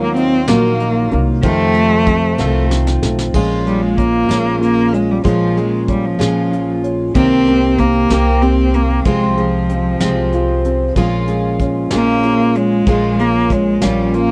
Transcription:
Already playing: D#2 D#3 F#3 A#3 D#4 F4
0.02 A#3
0.16 C4 D#4, closed hi-hat
0.48 A#1 D#3 F#3 A#3 D#4 F4, snare, closed hi-hat
0.80 D#4, closed hi-hat
1.11 C2 A#3, closed hi-hat
1.42 F2 C3 D#3 A3 C4 F4, kick, closed hi-hat
1.74 A3, closed hi-hat
2.06 C4, kick, closed hi-hat
2.38 C2 F2 D#3 A3 C4 F4, snare
2.70 C4, snare
2.87 snare
3.02 B1 A3, snare
3.19 snare
3.34 A#1 A#2 F3 G#3 C#4 F4, kick, crash
3.67 G3 G#3, closed hi-hat
3.81 G#3
3.97 A#3 C#4, kick, closed hi-hat
4.29 A#1 A#2 F3 G#3 C#4 F4, snare, closed hi-hat
4.61 A#3 F4, closed hi-hat
4.93 G#3 C#4, closed hi-hat
5.11 G3
5.24 A#1 A#2 F3 G#3 C#4 F4, kick, closed hi-hat
5.57 G#3, closed hi-hat
5.88 G3 C#4, kick, closed hi-hat
6.04 F3
6.19 A#1 A#2 F3 G#3 C#4 F4, snare, closed hi-hat
6.51 F4, closed hi-hat
6.84 C#4, closed hi-hat
7.15 C2 C3 D#3 A#3 C4 G4, kick, closed hi-hat
7.47 A#3, closed hi-hat
7.78 A#3 C4, kick, closed hi-hat
8.10 C2 C3 D#3 A#3 C4 G4, snare, closed hi-hat
8.42 C4 G4, closed hi-hat
8.74 A#3 C4, closed hi-hat
9.05 C2 C3 F3 G#3 C4 F4, kick, closed hi-hat
9.36 F3 G#3, closed hi-hat
9.69 C4, closed hi-hat
10.00 C2 C3 F3 G#3 C4 F4, snare, closed hi-hat
10.32 F4, closed hi-hat
10.64 C4, closed hi-hat
10.96 A#1 A#2 F3 G#3 C#4 F4, kick, closed hi-hat
11.27 G#3, closed hi-hat
11.59 C#4, kick, closed hi-hat
11.91 A#1 A#2 F3 G#3 A#3 C#4 F4, snare, closed hi-hat
12.23 F4, closed hi-hat
12.55 G#3 C#4, closed hi-hat
12.86 A#1 A#2 F3 G#3 C#4 F4, kick, closed hi-hat
13.19 G#3 A#3, closed hi-hat
13.50 G#3 C#4, kick, closed hi-hat
13.82 A#1 A#2 F3 G3 C#4 F4, snare, closed hi-hat
14.14 A#3 F4, closed hi-hat

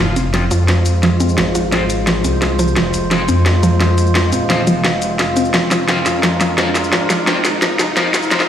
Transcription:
0.00 F1 G#3 F4 C5, riser
0.16 C4, closed hi-hat, shaker
0.33 F3 C4 F4, snare, closed hi-hat
0.51 F2 F3, closed hi-hat, shaker
0.68 F3, snare, closed hi-hat
0.86 closed hi-hat, shaker
1.03 F3, snare, closed hi-hat
1.20 C4, closed hi-hat, shaker
1.29 shaker
1.38 G#1 F3, snare, closed hi-hat
1.55 F3, closed hi-hat, shaker
1.72 F3 C4 F4, snare, closed hi-hat
1.90 closed hi-hat, shaker
2.07 F3, snare, closed hi-hat
2.24 C2 C4, closed hi-hat, shaker
2.42 F3, snare, closed hi-hat
2.59 F3, closed hi-hat, shaker
2.68 shaker
2.76 F1 F3, snare, closed hi-hat
2.94 closed hi-hat, shaker
3.11 F3 C4 F4, snare, closed hi-hat
3.28 F2 C4, closed hi-hat, shaker
3.46 F3, snare, closed hi-hat
3.63 F3, closed hi-hat, shaker
3.80 F3, snare, closed hi-hat
3.98 closed hi-hat, shaker
4.07 shaker
4.15 F2 F3, snare, closed hi-hat
4.32 D#1 C4, closed hi-hat, shaker
4.50 F3 C4 F4, snare, closed hi-hat
4.67 F1 F3, closed hi-hat, shaker
4.84 F3, snare, closed hi-hat
5.02 closed hi-hat, shaker
5.19 F3, snare, closed hi-hat
5.37 C4, closed hi-hat, shaker
5.45 shaker
5.54 F1 F3 A#4, snare, closed hi-hat
5.71 F3, snare, closed hi-hat, shaker
5.88 F3 C4 F4, snare, closed hi-hat
6.06 F2, snare, closed hi-hat, shaker
6.23 F3, snare, closed hi-hat
6.41 F3, snare, closed hi-hat, shaker
6.58 F3 C4 F4, snare, closed hi-hat
6.75 snare, closed hi-hat, shaker
6.84 shaker
6.93 G#1 F3, snare, closed hi-hat
7.10 F3, snare, closed hi-hat, shaker
7.27 F3 C4 F4, snare, closed hi-hat
7.45 snare, closed hi-hat, shaker
7.62 F3, snare, closed hi-hat
7.79 C2 F3, snare, closed hi-hat, shaker
7.96 F3 C4 F4, snare, closed hi-hat
8.14 snare, closed hi-hat, shaker
8.23 shaker
8.31 F1 F3 C4 F4, snare, closed hi-hat
8.40 snare

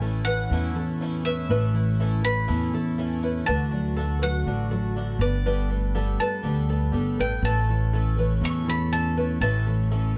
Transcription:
Already playing: A1 A2 E3
0.02 E3 A3 C#4 E4 A4
0.25 E3 E4 B4 F#5
0.29 A3 C#4
0.51 E2 A2 E3 A3 C#4 E4
0.74 E3 E4 A4
0.79 A3 C#4
1.01 E3 A3 C#4 E4
1.25 A3 C#4 E4 B4 E5
1.50 A1 A2 E3 A3 C#4 E4 B4
1.73 E3 A3 C#4 E4
2.00 E3 A3 C#4 E4 A4
2.24 E3 A3 C#4 E4 B4 B5
2.48 E2 A2 E3 A3 C#4 E4
2.73 E3 A3 C#4 E4 A4
2.98 E3 A3 C#4 E4
3.23 A3 C#4 E4 B4
3.46 D2 D3 A3 D4 F#4 B4 A5
3.71 F#3 A3 D4 F#4
3.96 D3 A3 D4 F#4 A4
4.22 F#3 A3 D4 F#4 B4 F#5
4.46 A1 D3 A3 D4 F#4
4.71 F#3 A3 D4 F#4 A4
4.96 D3 A3 D4 F#4
5.19 G1 G2 D4 A4 B4 D5
5.24 B3
5.46 G3 B3 D4 A4 B4
5.70 A3 B3 D4 A4
5.95 G3 B3 D4 A4
6.20 B3 D4 A4 B4 A5
6.43 D2 G3 B3 D4 A4
6.69 A3 B3 D4 A4
6.92 G1 G3 B3 D4 A4
7.18 A1 G2 B3 D4 A4 B4 G5
7.43 A1 A2 E3 A3 C#4 A4 B4 A5
7.69 E3 A3 C#4 A4
7.93 E3 A3 C#4 A4
8.17 E3 A3 C#4 A4 B4
8.41 E2 A2 E3 A3 C#4 E4 C#6
8.45 A4
8.67 E3 A3 C#4 A4 B5
8.93 E3 A3 C#4 A4 A5
9.17 A3 C#4 E4 A4 B4
9.41 A1 A2 E3 A3 C#4 A4 B4 A5
9.67 E3 A3 C#4 A4
9.91 E3 A3 C#4 A4

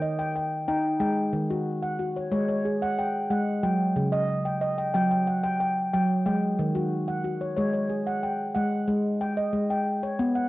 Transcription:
Already playing: D#3 G5
0.02 D#5
0.19 G5
0.36 G5
0.68 D#4 G5
1.00 G#3 G5
1.33 D#3
1.50 F#4
1.83 F#5
1.99 F#4
2.16 C#5
2.32 G#3 C#5
2.49 C#5
2.65 G#4
2.82 F#5
2.99 G5
3.30 G#3 F#5
3.63 F#3 G5
3.96 C#3
4.12 D#5
4.45 G5
4.61 D#5
4.78 G5
4.94 F#3 G5
5.11 G5
5.27 F#5
5.43 G5
5.60 G5
5.93 F#3 G5
6.26 G#3 G5
6.59 D#3
6.75 F#4
7.08 F#5
7.24 F#4
7.41 C#5
7.57 G#3 C#5
7.74 C#5
7.89 G#4
8.07 F#5
8.23 G5
8.55 G#3 F#5
8.88 G#3
9.21 G5
9.37 D#5
9.53 G#3
9.70 G5
10.03 C#5
10.19 B3
10.35 F#5

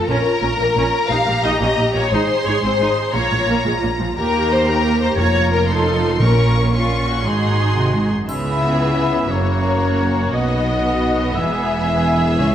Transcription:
Already playing: F4
0.07 A#1 A#2 C#4 A#4 A#5
0.41 A#1 A#2 C#4
0.58 A#1 A#2 A#3
0.75 A#1 A#2 C#4
1.09 A#1 A#2 D#4 G4 F5
1.25 A#1 A#2 A#3
1.42 A#1 A#2 D#4 D#5
1.60 A#1 A#2 C#4 D#5
1.77 A#1 A#2 D#4
1.94 A#1 A#2 A#3 C#5
2.10 G#1 G#2 D#4 G#4 C5 C6
2.45 G#1 G#2 D#4 C#5
2.61 G#1 G#2 C4 C5
2.78 G#1 G#2 D#4
3.13 A#1 A#2 A#3 F4 C#5 A#5
3.31 A#1 A#2 F3
3.46 A#1 A#2 A#3
3.64 A#1 A#2 G#3
3.81 A#1 A#2 A#3
3.99 A#1 A#2 F3
4.16 D#2 A#3 G4 A#4 A#5
4.51 C5
4.67 A#3 G4 A#4 A#5
5.02 C5
5.17 F1 F2 A#3 F4 C#5 A#5
5.52 A#4
5.69 D#4 F4 A4 C6
6.20 A#1 A#2 C#4 F4 A#4 C#6
6.73 C#4 F4 C#6
7.08 F#4
7.24 G#1 G#2 D#4 F#4 G#4 C6
7.76 C3
7.94 G#2
8.10 F#2
8.27 C#2 C#3 B3 E4 G#4 E5 B5, triangle
9.31 F#1 F#2 A#3 C#4 F#4 C#5 A#5
10.34 B1 B2 F#3 B3 D#4 D#5 F#5
11.36 E1 E2 G#3 E4 G#4 E5 G#5
12.39 C#2 C#3 C#4

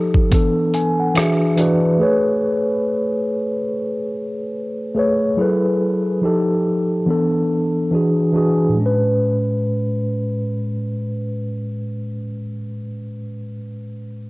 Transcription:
Already playing: F3 D#4 G4 A4
0.14 kick
0.30 E3 B3 D4, kick, closed hi-hat
0.34 A4
0.74 G#5, closed hi-hat
1.00 F#5
1.14 E3 D4 F#4 E5, cross-stick, closed hi-hat
1.18 G#4
1.56 E3 D4 F#4 D5, closed hi-hat
1.61 B4
1.99 A3 G#4 B4
2.03 C#5
4.95 A3 G#4 B4
4.99 C#5
5.37 F#3 E4 G#4 A4
5.41 B4
6.22 F3 D#4 G4
6.26 A4
7.06 E3 B3 D4
7.10 A4
7.90 E3 D4 F#4
7.95 G#4
8.32 E3 D4 F#4
8.37 G#4
8.68 A2
8.74 G#3
8.80 C#4
8.86 B4

